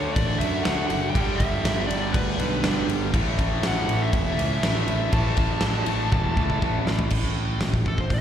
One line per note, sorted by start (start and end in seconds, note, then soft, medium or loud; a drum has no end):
0.00 0.15 D2 medium
0.00 0.38 D3 loud
0.00 0.61 D3 medium
0.00 0.39 A3 medium
0.00 0.63 A3 medium
0.00 0.40 D4 loud
0.00 0.64 D4 medium
0.00 0.14 C#5 loud
0.14 0.39 A1 medium
0.14 0.39 D5 loud
0.14 kick loud
0.14 ride loud
0.39 0.64 F#2 medium
0.39 0.65 A3 medium
0.39 0.64 D4 loud
0.39 0.63 E5 medium
0.39 ride medium
0.44 0.64 D3 medium
0.63 0.89 D2 medium
0.63 1.13 D3 medium
0.63 0.86 F#5 loud
0.63 snare loud
0.63 ride loud
0.67 1.14 A3 medium
0.67 1.15 D4 medium
0.87 1.14 F#1 medium
0.87 1.10 F#5 loud
0.87 ride medium
1.10 1.38 G5 loud
1.15 1.38 G1 loud
1.15 2.37 G2 medium
1.15 2.38 D3 medium
1.15 2.39 G3 medium
1.15 kick loud
1.15 ride loud
1.36 1.86 E5 loud
1.40 1.63 G1 loud
1.40 kick medium
1.40 ride medium
1.64 1.88 G1 loud
1.64 snare loud
1.64 ride loud
1.87 2.13 G1 medium
1.87 2.63 G2 medium
1.87 2.63 D3 medium
1.87 2.62 G3 loud
1.87 2.14 D5 loud
1.87 ride medium
2.13 2.37 D2 medium
2.13 2.84 B4 medium
2.13 kick loud
2.13 ride loud
2.39 2.62 B1 loud
2.39 2.64 D3 medium
2.39 2.63 G3 medium
2.39 ride medium
2.43 2.62 G2 medium
2.63 2.87 G1 loud
2.63 3.12 G2 medium
2.63 3.13 D3 medium
2.63 3.14 G3 medium
2.63 snare loud
2.63 ride loud
2.88 3.12 G1 loud
2.88 ride medium
3.14 3.37 A1 medium
3.14 4.40 A2 medium
3.14 4.38 E3 loud
3.14 4.37 A3 medium
3.14 kick loud
3.14 ride loud
3.39 3.62 A1 loud
3.39 kick medium
3.39 ride medium
3.63 3.87 A1 loud
3.63 4.03 F#5 loud
3.63 snare loud
3.63 ride loud
3.88 4.11 A1 medium
3.88 4.60 A2 medium
3.88 4.62 E3 medium
3.88 4.64 A3 loud
3.88 ride medium
4.02 4.14 E5 medium
4.13 4.36 E1 medium
4.13 5.16 E5 loud
4.13 kick loud
4.13 ride loud
4.37 4.61 C#2 loud
4.37 4.62 A2 medium
4.37 4.64 E3 medium
4.37 4.66 A3 loud
4.37 ride medium
4.63 4.86 A1 medium
4.63 5.11 A2 medium
4.63 5.14 E3 medium
4.63 5.15 A3 medium
4.63 snare loud
4.63 ride loud
4.88 5.11 A1 medium
4.88 ride medium
5.11 5.36 A1 loud
5.11 6.35 A2 medium
5.11 6.36 E3 loud
5.11 6.36 A3 loud
5.11 6.83 A5 loud
5.11 kick loud
5.11 ride loud
5.37 5.61 A1 loud
5.37 kick medium
5.37 ride medium
5.61 5.85 A1 loud
5.61 snare loud
5.61 ride loud
5.86 6.10 A1 medium
5.86 6.59 A2 medium
5.86 6.60 E3 loud
5.86 6.60 A3 medium
5.86 ride medium
6.12 6.35 E1 medium
6.12 kick loud
6.12 high tom medium
6.37 6.60 C#2 medium
6.37 6.60 A2 medium
6.37 6.61 E3 medium
6.37 6.60 A3 medium
6.37 kick medium
6.50 kick medium
6.61 6.85 A1 medium
6.61 7.10 A2 medium
6.61 7.10 E3 medium
6.61 7.11 A3 medium
6.61 kick loud
6.86 7.09 A1 medium
6.86 snare loud
6.99 floor tom loud
7.10 7.58 A1 medium
7.10 7.60 A2 loud
7.10 kick loud
7.10 crash loud
7.61 7.73 A1 medium
7.61 7.72 A2 medium
7.61 snare loud
7.61 open hi-hat medium
7.73 7.85 A1 medium
7.73 7.85 A2 medium
7.73 kick medium
7.86 7.98 A1 medium
7.86 7.97 A2 medium
7.86 8.00 A4 loud
7.86 kick medium
7.98 8.09 A1 medium
7.98 8.09 A2 medium
7.98 8.12 C5 medium
7.98 kick medium
8.10 8.21 A1 medium
8.10 8.21 A2 medium
8.10 8.21 E5 medium
8.10 kick loud
8.10 open hi-hat medium